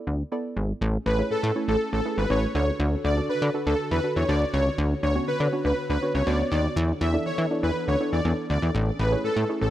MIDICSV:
0, 0, Header, 1, 5, 480
1, 0, Start_track
1, 0, Key_signature, 3, "major"
1, 0, Tempo, 495868
1, 788, Time_signature, 4, 2, 24, 8
1, 9391, End_track
2, 0, Start_track
2, 0, Title_t, "Supersaw synth"
2, 0, Program_c, 0, 81
2, 1028, Note_on_c, 0, 71, 86
2, 1129, Note_off_c, 0, 71, 0
2, 1267, Note_on_c, 0, 69, 93
2, 1369, Note_off_c, 0, 69, 0
2, 1630, Note_on_c, 0, 69, 77
2, 1730, Note_off_c, 0, 69, 0
2, 1871, Note_on_c, 0, 69, 74
2, 1971, Note_off_c, 0, 69, 0
2, 2108, Note_on_c, 0, 71, 78
2, 2209, Note_off_c, 0, 71, 0
2, 2227, Note_on_c, 0, 73, 85
2, 2329, Note_off_c, 0, 73, 0
2, 2467, Note_on_c, 0, 73, 78
2, 2568, Note_off_c, 0, 73, 0
2, 2946, Note_on_c, 0, 74, 81
2, 3048, Note_off_c, 0, 74, 0
2, 3187, Note_on_c, 0, 71, 89
2, 3288, Note_off_c, 0, 71, 0
2, 3546, Note_on_c, 0, 69, 82
2, 3648, Note_off_c, 0, 69, 0
2, 3786, Note_on_c, 0, 71, 90
2, 3888, Note_off_c, 0, 71, 0
2, 4026, Note_on_c, 0, 73, 69
2, 4128, Note_off_c, 0, 73, 0
2, 4147, Note_on_c, 0, 74, 86
2, 4249, Note_off_c, 0, 74, 0
2, 4385, Note_on_c, 0, 73, 91
2, 4487, Note_off_c, 0, 73, 0
2, 4868, Note_on_c, 0, 73, 86
2, 4969, Note_off_c, 0, 73, 0
2, 5106, Note_on_c, 0, 71, 91
2, 5208, Note_off_c, 0, 71, 0
2, 5467, Note_on_c, 0, 71, 73
2, 5569, Note_off_c, 0, 71, 0
2, 5706, Note_on_c, 0, 71, 82
2, 5808, Note_off_c, 0, 71, 0
2, 5947, Note_on_c, 0, 73, 80
2, 6048, Note_off_c, 0, 73, 0
2, 6066, Note_on_c, 0, 74, 82
2, 6168, Note_off_c, 0, 74, 0
2, 6306, Note_on_c, 0, 74, 88
2, 6408, Note_off_c, 0, 74, 0
2, 6788, Note_on_c, 0, 76, 87
2, 6889, Note_off_c, 0, 76, 0
2, 7027, Note_on_c, 0, 73, 83
2, 7129, Note_off_c, 0, 73, 0
2, 7385, Note_on_c, 0, 71, 87
2, 7488, Note_off_c, 0, 71, 0
2, 7624, Note_on_c, 0, 73, 76
2, 7727, Note_off_c, 0, 73, 0
2, 7866, Note_on_c, 0, 74, 76
2, 7968, Note_off_c, 0, 74, 0
2, 8229, Note_on_c, 0, 74, 78
2, 8330, Note_off_c, 0, 74, 0
2, 8708, Note_on_c, 0, 71, 86
2, 8809, Note_off_c, 0, 71, 0
2, 8948, Note_on_c, 0, 69, 93
2, 9049, Note_off_c, 0, 69, 0
2, 9308, Note_on_c, 0, 69, 78
2, 9391, Note_off_c, 0, 69, 0
2, 9391, End_track
3, 0, Start_track
3, 0, Title_t, "Synth pluck"
3, 0, Program_c, 1, 84
3, 0, Note_on_c, 1, 59, 96
3, 0, Note_on_c, 1, 64, 89
3, 0, Note_on_c, 1, 69, 84
3, 0, Note_on_c, 1, 74, 107
3, 197, Note_off_c, 1, 59, 0
3, 198, Note_off_c, 1, 64, 0
3, 199, Note_off_c, 1, 69, 0
3, 200, Note_off_c, 1, 74, 0
3, 307, Note_on_c, 1, 59, 108
3, 307, Note_on_c, 1, 64, 96
3, 309, Note_on_c, 1, 69, 98
3, 311, Note_on_c, 1, 74, 112
3, 677, Note_off_c, 1, 59, 0
3, 678, Note_off_c, 1, 64, 0
3, 679, Note_off_c, 1, 69, 0
3, 679, Note_off_c, 1, 74, 0
3, 1146, Note_on_c, 1, 57, 86
3, 1147, Note_on_c, 1, 61, 81
3, 1149, Note_on_c, 1, 64, 79
3, 1149, Note_on_c, 1, 68, 79
3, 1150, Note_on_c, 1, 73, 93
3, 1425, Note_off_c, 1, 57, 0
3, 1425, Note_off_c, 1, 61, 0
3, 1426, Note_off_c, 1, 64, 0
3, 1426, Note_off_c, 1, 68, 0
3, 1427, Note_off_c, 1, 73, 0
3, 1505, Note_on_c, 1, 57, 86
3, 1506, Note_on_c, 1, 61, 81
3, 1507, Note_on_c, 1, 64, 83
3, 1508, Note_on_c, 1, 68, 83
3, 1509, Note_on_c, 1, 73, 100
3, 1877, Note_off_c, 1, 57, 0
3, 1877, Note_off_c, 1, 61, 0
3, 1877, Note_off_c, 1, 64, 0
3, 1878, Note_off_c, 1, 68, 0
3, 1878, Note_off_c, 1, 73, 0
3, 1985, Note_on_c, 1, 57, 78
3, 1987, Note_on_c, 1, 61, 72
3, 1987, Note_on_c, 1, 64, 69
3, 1988, Note_on_c, 1, 68, 70
3, 1990, Note_on_c, 1, 71, 88
3, 2172, Note_off_c, 1, 57, 0
3, 2172, Note_off_c, 1, 61, 0
3, 2173, Note_off_c, 1, 64, 0
3, 2173, Note_off_c, 1, 68, 0
3, 2174, Note_off_c, 1, 71, 0
3, 2226, Note_on_c, 1, 57, 84
3, 2227, Note_on_c, 1, 61, 78
3, 2228, Note_on_c, 1, 64, 79
3, 2229, Note_on_c, 1, 68, 81
3, 2231, Note_on_c, 1, 73, 90
3, 2466, Note_on_c, 1, 62, 78
3, 2467, Note_off_c, 1, 57, 0
3, 2468, Note_off_c, 1, 61, 0
3, 2468, Note_off_c, 1, 64, 0
3, 2468, Note_on_c, 1, 66, 76
3, 2469, Note_off_c, 1, 68, 0
3, 2469, Note_off_c, 1, 73, 0
3, 2471, Note_on_c, 1, 69, 88
3, 2947, Note_off_c, 1, 62, 0
3, 2948, Note_off_c, 1, 66, 0
3, 2950, Note_off_c, 1, 69, 0
3, 3066, Note_on_c, 1, 62, 88
3, 3069, Note_on_c, 1, 66, 79
3, 3071, Note_on_c, 1, 69, 93
3, 3345, Note_off_c, 1, 62, 0
3, 3346, Note_off_c, 1, 66, 0
3, 3347, Note_off_c, 1, 69, 0
3, 3427, Note_on_c, 1, 62, 90
3, 3429, Note_on_c, 1, 66, 85
3, 3432, Note_on_c, 1, 69, 101
3, 3798, Note_off_c, 1, 62, 0
3, 3799, Note_off_c, 1, 66, 0
3, 3800, Note_off_c, 1, 69, 0
3, 3907, Note_on_c, 1, 62, 75
3, 3908, Note_on_c, 1, 66, 72
3, 3912, Note_on_c, 1, 69, 86
3, 4092, Note_off_c, 1, 62, 0
3, 4093, Note_off_c, 1, 66, 0
3, 4095, Note_off_c, 1, 69, 0
3, 4147, Note_on_c, 1, 62, 88
3, 4150, Note_on_c, 1, 66, 79
3, 4152, Note_on_c, 1, 69, 99
3, 4628, Note_off_c, 1, 62, 0
3, 4629, Note_off_c, 1, 66, 0
3, 4630, Note_off_c, 1, 69, 0
3, 4986, Note_on_c, 1, 59, 83
3, 4988, Note_on_c, 1, 61, 77
3, 4988, Note_on_c, 1, 62, 77
3, 4990, Note_on_c, 1, 66, 81
3, 4991, Note_on_c, 1, 73, 97
3, 5265, Note_off_c, 1, 59, 0
3, 5266, Note_off_c, 1, 61, 0
3, 5266, Note_off_c, 1, 62, 0
3, 5266, Note_off_c, 1, 66, 0
3, 5267, Note_off_c, 1, 73, 0
3, 5347, Note_on_c, 1, 59, 89
3, 5348, Note_on_c, 1, 61, 85
3, 5350, Note_on_c, 1, 62, 83
3, 5351, Note_on_c, 1, 66, 81
3, 5352, Note_on_c, 1, 73, 99
3, 5717, Note_off_c, 1, 59, 0
3, 5718, Note_off_c, 1, 61, 0
3, 5719, Note_off_c, 1, 62, 0
3, 5720, Note_off_c, 1, 66, 0
3, 5720, Note_off_c, 1, 73, 0
3, 5828, Note_on_c, 1, 59, 78
3, 5829, Note_on_c, 1, 61, 71
3, 5830, Note_on_c, 1, 62, 73
3, 5831, Note_on_c, 1, 66, 73
3, 5833, Note_on_c, 1, 73, 89
3, 6013, Note_off_c, 1, 59, 0
3, 6014, Note_off_c, 1, 61, 0
3, 6014, Note_off_c, 1, 62, 0
3, 6015, Note_off_c, 1, 66, 0
3, 6016, Note_off_c, 1, 73, 0
3, 6067, Note_on_c, 1, 59, 84
3, 6068, Note_on_c, 1, 61, 78
3, 6069, Note_on_c, 1, 62, 77
3, 6071, Note_on_c, 1, 66, 80
3, 6071, Note_on_c, 1, 73, 97
3, 6548, Note_off_c, 1, 59, 0
3, 6548, Note_off_c, 1, 61, 0
3, 6549, Note_off_c, 1, 62, 0
3, 6550, Note_off_c, 1, 66, 0
3, 6550, Note_off_c, 1, 73, 0
3, 6905, Note_on_c, 1, 59, 84
3, 6905, Note_on_c, 1, 62, 76
3, 6906, Note_on_c, 1, 64, 81
3, 6908, Note_on_c, 1, 69, 77
3, 6909, Note_on_c, 1, 74, 95
3, 7184, Note_off_c, 1, 59, 0
3, 7184, Note_off_c, 1, 62, 0
3, 7185, Note_off_c, 1, 64, 0
3, 7186, Note_off_c, 1, 69, 0
3, 7186, Note_off_c, 1, 74, 0
3, 7266, Note_on_c, 1, 59, 90
3, 7267, Note_on_c, 1, 62, 82
3, 7269, Note_on_c, 1, 64, 80
3, 7270, Note_on_c, 1, 69, 84
3, 7271, Note_on_c, 1, 74, 99
3, 7637, Note_off_c, 1, 59, 0
3, 7638, Note_off_c, 1, 62, 0
3, 7638, Note_off_c, 1, 64, 0
3, 7639, Note_off_c, 1, 69, 0
3, 7640, Note_off_c, 1, 74, 0
3, 7747, Note_on_c, 1, 59, 79
3, 7748, Note_on_c, 1, 62, 73
3, 7749, Note_on_c, 1, 64, 73
3, 7750, Note_on_c, 1, 69, 70
3, 7752, Note_on_c, 1, 74, 86
3, 7932, Note_off_c, 1, 59, 0
3, 7933, Note_off_c, 1, 62, 0
3, 7934, Note_off_c, 1, 64, 0
3, 7934, Note_off_c, 1, 69, 0
3, 7935, Note_off_c, 1, 74, 0
3, 7987, Note_on_c, 1, 59, 84
3, 7987, Note_on_c, 1, 62, 79
3, 7989, Note_on_c, 1, 64, 75
3, 7990, Note_on_c, 1, 69, 77
3, 7991, Note_on_c, 1, 74, 98
3, 8467, Note_off_c, 1, 59, 0
3, 8468, Note_off_c, 1, 62, 0
3, 8468, Note_off_c, 1, 64, 0
3, 8469, Note_off_c, 1, 69, 0
3, 8470, Note_off_c, 1, 74, 0
3, 8825, Note_on_c, 1, 57, 83
3, 8826, Note_on_c, 1, 61, 80
3, 8827, Note_on_c, 1, 64, 81
3, 8828, Note_on_c, 1, 68, 74
3, 8830, Note_on_c, 1, 73, 92
3, 9104, Note_off_c, 1, 57, 0
3, 9104, Note_off_c, 1, 61, 0
3, 9105, Note_off_c, 1, 64, 0
3, 9105, Note_off_c, 1, 68, 0
3, 9107, Note_off_c, 1, 73, 0
3, 9186, Note_on_c, 1, 57, 87
3, 9188, Note_on_c, 1, 61, 81
3, 9189, Note_on_c, 1, 64, 81
3, 9190, Note_on_c, 1, 68, 82
3, 9191, Note_on_c, 1, 73, 97
3, 9391, Note_off_c, 1, 57, 0
3, 9391, Note_off_c, 1, 61, 0
3, 9391, Note_off_c, 1, 64, 0
3, 9391, Note_off_c, 1, 68, 0
3, 9391, Note_off_c, 1, 73, 0
3, 9391, End_track
4, 0, Start_track
4, 0, Title_t, "Analog synth pad"
4, 0, Program_c, 2, 89
4, 791, Note_on_c, 2, 57, 80
4, 792, Note_on_c, 2, 61, 96
4, 793, Note_on_c, 2, 68, 88
4, 2453, Note_off_c, 2, 57, 0
4, 2453, Note_off_c, 2, 61, 0
4, 2454, Note_off_c, 2, 68, 0
4, 2470, Note_on_c, 2, 50, 85
4, 2470, Note_on_c, 2, 62, 81
4, 2470, Note_on_c, 2, 66, 76
4, 2470, Note_on_c, 2, 69, 92
4, 4607, Note_off_c, 2, 66, 0
4, 4607, Note_off_c, 2, 69, 0
4, 4608, Note_off_c, 2, 62, 0
4, 4628, Note_on_c, 2, 59, 80
4, 4628, Note_on_c, 2, 66, 91
4, 4629, Note_on_c, 2, 73, 78
4, 6510, Note_off_c, 2, 50, 0
4, 6529, Note_off_c, 2, 66, 0
4, 6529, Note_off_c, 2, 73, 0
4, 6548, Note_on_c, 2, 52, 86
4, 6548, Note_on_c, 2, 62, 81
4, 6548, Note_on_c, 2, 69, 95
4, 8430, Note_off_c, 2, 59, 0
4, 8449, Note_off_c, 2, 52, 0
4, 8449, Note_off_c, 2, 62, 0
4, 8449, Note_off_c, 2, 69, 0
4, 8471, Note_on_c, 2, 61, 94
4, 8471, Note_on_c, 2, 68, 85
4, 8472, Note_on_c, 2, 57, 78
4, 9391, Note_off_c, 2, 57, 0
4, 9391, Note_off_c, 2, 61, 0
4, 9391, Note_off_c, 2, 68, 0
4, 9391, End_track
5, 0, Start_track
5, 0, Title_t, "Analog synth bass"
5, 0, Program_c, 3, 38
5, 68, Note_on_c, 3, 38, 83
5, 224, Note_off_c, 3, 38, 0
5, 547, Note_on_c, 3, 32, 93
5, 703, Note_off_c, 3, 32, 0
5, 788, Note_on_c, 3, 33, 116
5, 944, Note_off_c, 3, 33, 0
5, 1026, Note_on_c, 3, 33, 103
5, 1183, Note_off_c, 3, 33, 0
5, 1266, Note_on_c, 3, 45, 52
5, 1315, Note_off_c, 3, 45, 0
5, 1387, Note_on_c, 3, 45, 98
5, 1466, Note_off_c, 3, 45, 0
5, 1627, Note_on_c, 3, 33, 90
5, 1706, Note_off_c, 3, 33, 0
5, 1866, Note_on_c, 3, 33, 83
5, 1945, Note_off_c, 3, 33, 0
5, 2107, Note_on_c, 3, 32, 96
5, 2186, Note_off_c, 3, 32, 0
5, 2228, Note_on_c, 3, 33, 103
5, 2384, Note_off_c, 3, 33, 0
5, 2468, Note_on_c, 3, 38, 112
5, 2624, Note_off_c, 3, 38, 0
5, 2707, Note_on_c, 3, 38, 118
5, 2863, Note_off_c, 3, 38, 0
5, 2948, Note_on_c, 3, 38, 104
5, 3104, Note_off_c, 3, 38, 0
5, 3189, Note_on_c, 3, 50, 53
5, 3237, Note_off_c, 3, 50, 0
5, 3309, Note_on_c, 3, 50, 99
5, 3387, Note_off_c, 3, 50, 0
5, 3550, Note_on_c, 3, 38, 95
5, 3627, Note_off_c, 3, 38, 0
5, 3789, Note_on_c, 3, 40, 87
5, 3867, Note_off_c, 3, 40, 0
5, 4031, Note_on_c, 3, 40, 86
5, 4108, Note_off_c, 3, 40, 0
5, 4150, Note_on_c, 3, 38, 97
5, 4305, Note_off_c, 3, 38, 0
5, 4390, Note_on_c, 3, 37, 101
5, 4546, Note_off_c, 3, 37, 0
5, 4629, Note_on_c, 3, 38, 113
5, 4785, Note_off_c, 3, 38, 0
5, 4870, Note_on_c, 3, 38, 99
5, 5026, Note_off_c, 3, 38, 0
5, 5109, Note_on_c, 3, 50, 52
5, 5157, Note_off_c, 3, 50, 0
5, 5229, Note_on_c, 3, 50, 104
5, 5306, Note_off_c, 3, 50, 0
5, 5467, Note_on_c, 3, 38, 94
5, 5546, Note_off_c, 3, 38, 0
5, 5709, Note_on_c, 3, 38, 96
5, 5787, Note_off_c, 3, 38, 0
5, 5949, Note_on_c, 3, 37, 89
5, 6027, Note_off_c, 3, 37, 0
5, 6068, Note_on_c, 3, 38, 95
5, 6224, Note_off_c, 3, 38, 0
5, 6308, Note_on_c, 3, 39, 98
5, 6464, Note_off_c, 3, 39, 0
5, 6547, Note_on_c, 3, 40, 117
5, 6704, Note_off_c, 3, 40, 0
5, 6786, Note_on_c, 3, 40, 110
5, 6943, Note_off_c, 3, 40, 0
5, 7028, Note_on_c, 3, 52, 50
5, 7076, Note_off_c, 3, 52, 0
5, 7145, Note_on_c, 3, 52, 98
5, 7224, Note_off_c, 3, 52, 0
5, 7387, Note_on_c, 3, 40, 90
5, 7466, Note_off_c, 3, 40, 0
5, 7627, Note_on_c, 3, 38, 91
5, 7705, Note_off_c, 3, 38, 0
5, 7867, Note_on_c, 3, 40, 88
5, 7945, Note_off_c, 3, 40, 0
5, 7986, Note_on_c, 3, 40, 101
5, 8065, Note_off_c, 3, 40, 0
5, 8228, Note_on_c, 3, 38, 98
5, 8306, Note_off_c, 3, 38, 0
5, 8348, Note_on_c, 3, 40, 92
5, 8426, Note_off_c, 3, 40, 0
5, 8467, Note_on_c, 3, 33, 109
5, 8623, Note_off_c, 3, 33, 0
5, 8707, Note_on_c, 3, 33, 98
5, 8863, Note_off_c, 3, 33, 0
5, 8947, Note_on_c, 3, 45, 50
5, 8996, Note_off_c, 3, 45, 0
5, 9065, Note_on_c, 3, 45, 96
5, 9144, Note_off_c, 3, 45, 0
5, 9307, Note_on_c, 3, 33, 86
5, 9385, Note_off_c, 3, 33, 0
5, 9391, End_track
0, 0, End_of_file